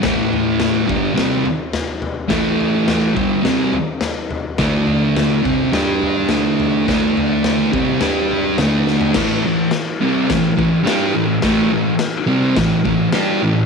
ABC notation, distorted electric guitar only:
X:1
M:4/4
L:1/8
Q:1/4=105
K:D
V:1 name="Distorted electric guitar" clef=bass
[A,,E,A,]3 [G,,D,G,] [=C,G,=C] z3 | [A,,E,A,]3 [G,,D,G,] [=C,G,=C] z3 | [D,A,D]3 [=C,G,=C] [G,DG]2 [D,A,D]2 | [D,A,D]3 [=C,G,=C] [G,DG]2 [D,A,D]2 |
[A,,E,A,] [A,,E,] z [=C,G,=C] [A,,E,] [A,,E,] [G,DG] [A,,E,] | [A,,E,A,] [A,,E,] z [=C,G,=C] [A,,E,] [A,,E,] [G,DG] [A,,E,] |]